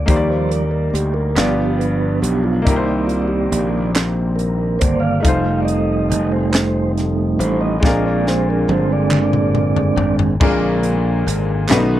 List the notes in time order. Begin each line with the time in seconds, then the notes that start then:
Already playing: A#3 D5
0.06 D#2 F3 G3 A#3 D#4 G4 C5 D5, kick, closed hi-hat
0.16 D5
0.30 C5
0.49 A#4, closed hi-hat
0.71 A#4
0.93 D2 G4, closed hi-hat
1.14 A#4
1.35 G1 G2 F3 B3 D4 F4 G4 D5, snare, clap, closed hi-hat
1.79 B4, closed hi-hat
2.22 B1 G4, closed hi-hat
2.44 F4
2.62 D#3 A#3 D#4
2.66 C2 C3 D#3 A#3 C4 G4 A#4 D5, kick, closed hi-hat
2.76 C5
2.85 D#4
3.07 F4, closed hi-hat
3.22 F#4
3.28 G4
3.52 A#1, closed hi-hat
3.95 snare, clap, closed hi-hat
4.36 A#4, closed hi-hat
4.79 G1 D#3 A#3 C5 D5, kick, closed hi-hat
5.00 F5
5.20 F3 G3 A3 C4 D#4
5.24 F1 D#4 F4 C5, kick, closed hi-hat
5.61 D5
5.65 D#5, closed hi-hat
6.10 F1 D#5, closed hi-hat
6.32 C5
6.51 C5, snare, clap, closed hi-hat
6.98 snare, closed hi-hat
7.39 A1 G3 A3 D#4 C5, closed hi-hat
7.61 D#5
7.80 A#1 A#2 D3 G#3 A#3 C4 D4, kick
7.85 F4 A#4, snare
8.06 D5
8.27 C5, snare
8.50 A#4
8.68 G1 C5, high tom
8.93 D5
9.11 clap, mid tom
9.33 mid tom
9.55 mid tom
9.76 floor tom
9.96 G#1, floor tom
10.19 floor tom
10.40 A#1 A#2 D3 F3 G#3 A#3 C4 D4 F4 A#4, kick, crash
10.83 closed hi-hat
11.26 G#1, closed hi-hat
11.68 B1 B2 D#3 F#3 A3 B3 C#4 D4 F#4 B4, snare, clap, closed hi-hat
11.77 D#4